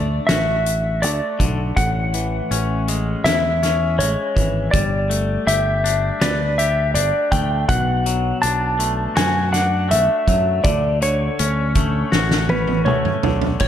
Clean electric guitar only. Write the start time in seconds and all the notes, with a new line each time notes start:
Already playing: D3 A3
0.28 F#4
1.02 A3
1.39 D3
1.76 A2
2.14 E3
2.51 C#4
2.88 G#3
3.25 E4
3.63 C#4
3.98 G#3
4.36 E3
4.73 G3
5.10 A3
5.47 G4
5.84 D4
6.21 B4
6.59 G4
6.95 D4
7.32 A3
7.69 B2
8.06 F#3
8.42 D4
8.79 A3
9.16 F#4
9.52 D4
9.89 A3
10.27 F#3
10.64 D3
11.01 D3
11.39 C#4
11.75 A3
12.12 F#4
12.49 C#4
12.87 A3
13.24 D3
13.61 A2